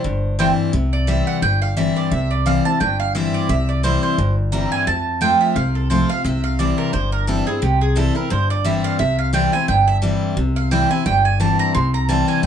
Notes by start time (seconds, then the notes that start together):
Already playing: C5
0.04 G1 G2
0.39 E3 G3 C4 E4 C5 G5
0.73 C2 C3
0.93 D5
1.07 E3 G3 C4 E4 E5
1.27 F#5
1.42 G1 G2 G5
1.62 F5
1.77 E3 G3 C4 E4 E5
1.96 D5
2.11 C2 C3 E5
2.31 D5
2.46 E3 G3 C4 E4 F5
2.65 C4 E4 A5
2.80 G1 G2 G5
3.00 F5
3.15 E3 G3 C4 E4 E5
3.34 D5
3.49 C2 C3 E5
3.69 D5
3.83 E3 G3 C4 E4 C5
4.03 C5
4.18 G1 G2
4.52 E3 G3 C4 E4 A#5
4.72 G#5
4.87 F2 A5
5.21 F3 A3 C4 F4 G5
5.41 E5
5.56 C2 C3 F5
5.75 A4
5.90 F3 A3 C4 F4 C5
6.09 C4 F4 F5
6.25 C2 C3 E5
6.44 F5
6.59 E3 G3 C4 E4 D5
6.78 A#4
6.93 G1 G2 C5
7.12 A#4
7.27 E3 G3 C4 E4 A4
7.46 C4 E4 G#4
7.62 C2 C3 G4
7.81 G#4
7.96 E3 G3 C4 E4 A4
8.15 C4 E4 A#4
8.30 G1 G2 C5
8.50 D5
8.64 E3 G3 C4 E4 E5
8.84 F5
8.99 C2 C3 E5
9.19 F5
9.33 E3 G3 C4 E4 G5
9.52 C4 E4 G#5
9.68 G1 G2 G5
9.87 E5
10.02 E3 G3 C4 E4
10.37 C2 C3
10.56 F5
10.71 E3 G3 C4 E4 G5
10.90 C4 E4 G#5
11.06 G1 G2 G5
11.25 G#5
11.40 E3 G3 C4 E4 A5
11.59 A#5
11.74 C2 C3 C6
11.94 A#5
12.09 E3 G3 C4 E4 A5
12.28 G#5
12.43 G1 G2 G5